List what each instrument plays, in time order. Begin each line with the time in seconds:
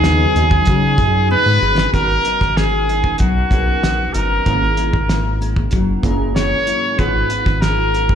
Already playing: analog synth bass D#2, steel-string acoustic guitar C#3 F#3 D#4 G#4, ambient pad F#3 C#4 D#4, synth keys B3 D#4 F#4 G#4, trumpet G#4
0.04 steel-string acoustic guitar B3, snare, closed hi-hat
0.36 analog synth bass D#2, steel-string acoustic guitar D#4, closed hi-hat
0.51 kick
0.65 analog synth bass C#3, steel-string acoustic guitar F#3, kick, closed hi-hat
0.98 analog synth bass F#2, steel-string acoustic guitar G#4, kick, closed hi-hat
1.30 steel-string acoustic guitar B3, trumpet B4
1.46 analog synth bass G#2
1.62 analog synth bass G1, steel-string acoustic guitar G#4
1.78 snare
1.92 analog synth bass G#1, synth keys B3 C#4 F#4 A#4, trumpet A#4, kick, closed hi-hat
2.25 steel-string acoustic guitar D#4, closed hi-hat
2.41 analog synth bass G#1, kick, snare
2.57 trumpet G#4, steel-string acoustic guitar G#4, snare, closed hi-hat
2.89 steel-string acoustic guitar D#4, closed hi-hat
3.04 kick
3.18 analog synth bass B1, steel-string acoustic guitar F#3, trumpet F#4, kick, closed hi-hat
3.50 analog synth bass B1, synth keys B3 C#4 F#4 A#4, steel-string acoustic guitar G#4, kick, closed hi-hat
3.83 analog synth bass A#1, steel-string acoustic guitar B3, snare, closed hi-hat
4.13 analog synth bass G1, steel-string acoustic guitar D#4, trumpet A#4, closed hi-hat
4.45 analog synth bass G#1, steel-string acoustic guitar G#2, synth keys A#3 C#4 E4 G#4, kick, closed hi-hat
4.77 steel-string acoustic guitar E4, closed hi-hat
4.93 kick
5.09 steel-string acoustic guitar A#4, snare, closed hi-hat
5.41 steel-string acoustic guitar E4, closed hi-hat
5.56 kick
5.71 analog synth bass F#1, steel-string acoustic guitar F#3, kick, closed hi-hat
6.03 analog synth bass F#1, synth keys A#3 C#4 E4 G#4, steel-string acoustic guitar A#4, kick, closed hi-hat
6.36 steel-string acoustic guitar C#4, trumpet C#5, snare, closed hi-hat
6.67 steel-string acoustic guitar E4, closed hi-hat
6.97 analog synth bass G#1, steel-string acoustic guitar G#2, synth keys B3 D#4 F4 G#4, trumpet B4, kick, closed hi-hat
7.30 steel-string acoustic guitar F4, closed hi-hat
7.46 analog synth bass G#1, kick, snare
7.61 steel-string acoustic guitar G#4, trumpet A#4, snare, closed hi-hat
7.94 steel-string acoustic guitar F4, closed hi-hat
8.09 kick